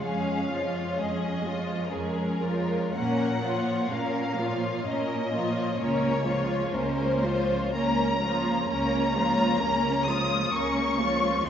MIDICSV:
0, 0, Header, 1, 5, 480
1, 0, Start_track
1, 0, Tempo, 947867
1, 18, Time_signature, 3, 2, 24, 8
1, 978, Tempo, 1030928
1, 1458, Tempo, 941915
1, 3378, Tempo, 1015228
1, 3858, Tempo, 923077
1, 5298, Tempo, 956938
1, 5789, End_track
2, 0, Start_track
2, 0, Title_t, "Violin section"
2, 0, Program_c, 0, 48
2, 12, Note_on_c, 0, 77, 59
2, 488, Note_off_c, 0, 77, 0
2, 490, Note_on_c, 0, 75, 56
2, 972, Note_off_c, 0, 75, 0
2, 972, Note_on_c, 0, 70, 59
2, 1455, Note_off_c, 0, 70, 0
2, 1456, Note_on_c, 0, 78, 64
2, 1929, Note_off_c, 0, 78, 0
2, 1936, Note_on_c, 0, 77, 57
2, 2422, Note_on_c, 0, 75, 65
2, 2424, Note_off_c, 0, 77, 0
2, 2900, Note_off_c, 0, 75, 0
2, 2903, Note_on_c, 0, 73, 69
2, 3376, Note_on_c, 0, 72, 81
2, 3377, Note_off_c, 0, 73, 0
2, 3847, Note_off_c, 0, 72, 0
2, 3865, Note_on_c, 0, 82, 76
2, 4339, Note_off_c, 0, 82, 0
2, 4347, Note_on_c, 0, 82, 84
2, 5044, Note_off_c, 0, 82, 0
2, 5059, Note_on_c, 0, 87, 79
2, 5299, Note_off_c, 0, 87, 0
2, 5301, Note_on_c, 0, 85, 73
2, 5779, Note_off_c, 0, 85, 0
2, 5789, End_track
3, 0, Start_track
3, 0, Title_t, "Violin section"
3, 0, Program_c, 1, 48
3, 19, Note_on_c, 1, 68, 35
3, 20, Note_off_c, 1, 68, 0
3, 20, Note_on_c, 1, 68, 39
3, 245, Note_off_c, 1, 68, 0
3, 262, Note_on_c, 1, 73, 38
3, 265, Note_on_c, 1, 65, 41
3, 501, Note_off_c, 1, 73, 0
3, 503, Note_off_c, 1, 65, 0
3, 503, Note_on_c, 1, 68, 33
3, 507, Note_off_c, 1, 68, 0
3, 507, Note_on_c, 1, 68, 37
3, 733, Note_on_c, 1, 73, 38
3, 734, Note_on_c, 1, 65, 36
3, 740, Note_off_c, 1, 68, 0
3, 971, Note_on_c, 1, 68, 40
3, 973, Note_off_c, 1, 68, 0
3, 973, Note_on_c, 1, 68, 34
3, 976, Note_off_c, 1, 65, 0
3, 976, Note_off_c, 1, 73, 0
3, 1197, Note_off_c, 1, 68, 0
3, 1212, Note_on_c, 1, 65, 33
3, 1213, Note_on_c, 1, 73, 36
3, 1454, Note_on_c, 1, 70, 43
3, 1455, Note_off_c, 1, 65, 0
3, 1456, Note_off_c, 1, 73, 0
3, 1456, Note_on_c, 1, 61, 40
3, 1683, Note_off_c, 1, 70, 0
3, 1684, Note_off_c, 1, 61, 0
3, 1702, Note_on_c, 1, 73, 39
3, 1703, Note_on_c, 1, 65, 43
3, 1940, Note_off_c, 1, 65, 0
3, 1940, Note_off_c, 1, 73, 0
3, 1947, Note_on_c, 1, 61, 39
3, 1948, Note_on_c, 1, 70, 46
3, 2182, Note_on_c, 1, 73, 39
3, 2184, Note_on_c, 1, 65, 41
3, 2186, Note_off_c, 1, 61, 0
3, 2187, Note_off_c, 1, 70, 0
3, 2426, Note_off_c, 1, 73, 0
3, 2427, Note_off_c, 1, 65, 0
3, 2433, Note_on_c, 1, 61, 43
3, 2433, Note_on_c, 1, 70, 39
3, 2653, Note_off_c, 1, 61, 0
3, 2653, Note_off_c, 1, 70, 0
3, 2671, Note_on_c, 1, 73, 41
3, 2674, Note_on_c, 1, 65, 39
3, 2903, Note_on_c, 1, 61, 44
3, 2904, Note_on_c, 1, 70, 48
3, 2905, Note_off_c, 1, 73, 0
3, 2906, Note_off_c, 1, 65, 0
3, 3121, Note_off_c, 1, 61, 0
3, 3122, Note_off_c, 1, 70, 0
3, 3142, Note_on_c, 1, 73, 44
3, 3145, Note_on_c, 1, 65, 46
3, 3379, Note_off_c, 1, 73, 0
3, 3381, Note_off_c, 1, 65, 0
3, 3382, Note_on_c, 1, 70, 46
3, 3383, Note_on_c, 1, 61, 43
3, 3618, Note_off_c, 1, 61, 0
3, 3618, Note_off_c, 1, 70, 0
3, 3619, Note_on_c, 1, 65, 43
3, 3619, Note_on_c, 1, 73, 45
3, 3855, Note_on_c, 1, 70, 45
3, 3856, Note_on_c, 1, 61, 44
3, 3859, Note_off_c, 1, 65, 0
3, 3859, Note_off_c, 1, 73, 0
3, 4087, Note_off_c, 1, 70, 0
3, 4088, Note_off_c, 1, 61, 0
3, 4111, Note_on_c, 1, 73, 43
3, 4113, Note_on_c, 1, 65, 42
3, 4345, Note_on_c, 1, 70, 49
3, 4347, Note_off_c, 1, 73, 0
3, 4348, Note_off_c, 1, 65, 0
3, 4348, Note_on_c, 1, 61, 49
3, 4565, Note_off_c, 1, 70, 0
3, 4567, Note_off_c, 1, 61, 0
3, 4584, Note_on_c, 1, 73, 51
3, 4585, Note_on_c, 1, 65, 46
3, 4820, Note_off_c, 1, 65, 0
3, 4820, Note_off_c, 1, 73, 0
3, 4822, Note_on_c, 1, 70, 45
3, 4823, Note_on_c, 1, 61, 50
3, 5059, Note_off_c, 1, 61, 0
3, 5059, Note_off_c, 1, 70, 0
3, 5064, Note_on_c, 1, 73, 44
3, 5065, Note_on_c, 1, 65, 46
3, 5301, Note_on_c, 1, 61, 48
3, 5302, Note_off_c, 1, 65, 0
3, 5302, Note_off_c, 1, 73, 0
3, 5305, Note_on_c, 1, 70, 47
3, 5521, Note_off_c, 1, 61, 0
3, 5523, Note_off_c, 1, 70, 0
3, 5543, Note_on_c, 1, 65, 44
3, 5544, Note_on_c, 1, 73, 45
3, 5781, Note_off_c, 1, 65, 0
3, 5782, Note_off_c, 1, 73, 0
3, 5789, End_track
4, 0, Start_track
4, 0, Title_t, "Viola section"
4, 0, Program_c, 2, 48
4, 22, Note_on_c, 2, 56, 41
4, 26, Note_on_c, 2, 61, 44
4, 246, Note_off_c, 2, 56, 0
4, 248, Note_off_c, 2, 61, 0
4, 263, Note_on_c, 2, 56, 35
4, 264, Note_on_c, 2, 53, 39
4, 490, Note_off_c, 2, 56, 0
4, 492, Note_on_c, 2, 61, 38
4, 496, Note_on_c, 2, 56, 37
4, 502, Note_off_c, 2, 53, 0
4, 726, Note_off_c, 2, 56, 0
4, 732, Note_on_c, 2, 56, 38
4, 733, Note_off_c, 2, 61, 0
4, 735, Note_on_c, 2, 53, 36
4, 970, Note_off_c, 2, 56, 0
4, 975, Note_on_c, 2, 61, 36
4, 976, Note_off_c, 2, 53, 0
4, 976, Note_on_c, 2, 56, 37
4, 1198, Note_off_c, 2, 56, 0
4, 1198, Note_off_c, 2, 61, 0
4, 1214, Note_on_c, 2, 56, 43
4, 1215, Note_on_c, 2, 53, 42
4, 1456, Note_on_c, 2, 58, 49
4, 1456, Note_on_c, 2, 61, 45
4, 1457, Note_off_c, 2, 53, 0
4, 1457, Note_off_c, 2, 56, 0
4, 1684, Note_off_c, 2, 58, 0
4, 1684, Note_off_c, 2, 61, 0
4, 1704, Note_on_c, 2, 53, 41
4, 1706, Note_on_c, 2, 58, 40
4, 1931, Note_off_c, 2, 58, 0
4, 1937, Note_on_c, 2, 58, 42
4, 1937, Note_on_c, 2, 61, 38
4, 1941, Note_off_c, 2, 53, 0
4, 2171, Note_off_c, 2, 58, 0
4, 2177, Note_on_c, 2, 58, 40
4, 2178, Note_on_c, 2, 53, 40
4, 2181, Note_off_c, 2, 61, 0
4, 2418, Note_off_c, 2, 58, 0
4, 2420, Note_on_c, 2, 61, 45
4, 2424, Note_off_c, 2, 53, 0
4, 2424, Note_on_c, 2, 58, 37
4, 2646, Note_off_c, 2, 61, 0
4, 2648, Note_off_c, 2, 58, 0
4, 2665, Note_on_c, 2, 58, 42
4, 2667, Note_on_c, 2, 53, 43
4, 2898, Note_off_c, 2, 58, 0
4, 2903, Note_off_c, 2, 53, 0
4, 2904, Note_on_c, 2, 61, 54
4, 2905, Note_on_c, 2, 58, 49
4, 3121, Note_off_c, 2, 61, 0
4, 3122, Note_off_c, 2, 58, 0
4, 3141, Note_on_c, 2, 58, 43
4, 3142, Note_on_c, 2, 53, 43
4, 3377, Note_off_c, 2, 58, 0
4, 3380, Note_off_c, 2, 53, 0
4, 3383, Note_on_c, 2, 58, 51
4, 3384, Note_on_c, 2, 61, 49
4, 3612, Note_off_c, 2, 58, 0
4, 3615, Note_on_c, 2, 53, 43
4, 3617, Note_on_c, 2, 58, 44
4, 3619, Note_off_c, 2, 61, 0
4, 3850, Note_off_c, 2, 58, 0
4, 3856, Note_on_c, 2, 58, 44
4, 3856, Note_on_c, 2, 61, 43
4, 3857, Note_off_c, 2, 53, 0
4, 4087, Note_off_c, 2, 58, 0
4, 4087, Note_off_c, 2, 61, 0
4, 4112, Note_on_c, 2, 53, 50
4, 4112, Note_on_c, 2, 58, 45
4, 4344, Note_off_c, 2, 58, 0
4, 4348, Note_off_c, 2, 53, 0
4, 4349, Note_on_c, 2, 61, 56
4, 4350, Note_on_c, 2, 58, 55
4, 4567, Note_off_c, 2, 61, 0
4, 4568, Note_off_c, 2, 58, 0
4, 4589, Note_on_c, 2, 53, 50
4, 4593, Note_on_c, 2, 58, 49
4, 4817, Note_off_c, 2, 58, 0
4, 4822, Note_off_c, 2, 53, 0
4, 4823, Note_on_c, 2, 58, 47
4, 4825, Note_on_c, 2, 61, 51
4, 5057, Note_off_c, 2, 58, 0
4, 5061, Note_off_c, 2, 61, 0
4, 5063, Note_on_c, 2, 58, 42
4, 5065, Note_on_c, 2, 53, 52
4, 5299, Note_off_c, 2, 58, 0
4, 5302, Note_off_c, 2, 53, 0
4, 5304, Note_on_c, 2, 61, 45
4, 5305, Note_on_c, 2, 58, 44
4, 5522, Note_off_c, 2, 61, 0
4, 5523, Note_off_c, 2, 58, 0
4, 5538, Note_on_c, 2, 53, 51
4, 5538, Note_on_c, 2, 58, 44
4, 5779, Note_off_c, 2, 53, 0
4, 5779, Note_off_c, 2, 58, 0
4, 5789, End_track
5, 0, Start_track
5, 0, Title_t, "Cello section"
5, 0, Program_c, 3, 48
5, 11, Note_on_c, 3, 41, 46
5, 441, Note_off_c, 3, 41, 0
5, 497, Note_on_c, 3, 41, 50
5, 918, Note_off_c, 3, 41, 0
5, 978, Note_on_c, 3, 41, 43
5, 1402, Note_off_c, 3, 41, 0
5, 1458, Note_on_c, 3, 46, 54
5, 1883, Note_off_c, 3, 46, 0
5, 1939, Note_on_c, 3, 46, 56
5, 2368, Note_off_c, 3, 46, 0
5, 2426, Note_on_c, 3, 46, 53
5, 2847, Note_off_c, 3, 46, 0
5, 2906, Note_on_c, 3, 37, 59
5, 3321, Note_off_c, 3, 37, 0
5, 3375, Note_on_c, 3, 37, 58
5, 3801, Note_off_c, 3, 37, 0
5, 3858, Note_on_c, 3, 37, 53
5, 4289, Note_off_c, 3, 37, 0
5, 4345, Note_on_c, 3, 37, 65
5, 4763, Note_off_c, 3, 37, 0
5, 4816, Note_on_c, 3, 37, 61
5, 5240, Note_off_c, 3, 37, 0
5, 5298, Note_on_c, 3, 37, 58
5, 5721, Note_off_c, 3, 37, 0
5, 5789, End_track
0, 0, End_of_file